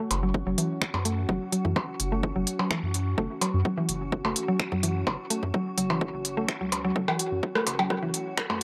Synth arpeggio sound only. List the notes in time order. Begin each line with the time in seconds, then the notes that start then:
0.23 F#3
0.47 F#3
0.58 E3
1.05 A3
1.29 F#3
1.52 F#3
1.65 E3
2.12 A3
2.36 F#3
2.59 F#3
2.71 E3
3.18 A3
3.41 F#3
3.65 F#3
3.78 E3
4.25 A3
4.48 F#3
4.72 F#3
4.83 E3
5.30 A3
5.54 F#3
5.78 F#3
5.90 E3
6.37 A3
6.61 F#3
6.85 F#3
6.96 F#3
7.08 E3
7.55 A3
7.79 F#3
7.90 F#3
8.03 E3
8.50 A3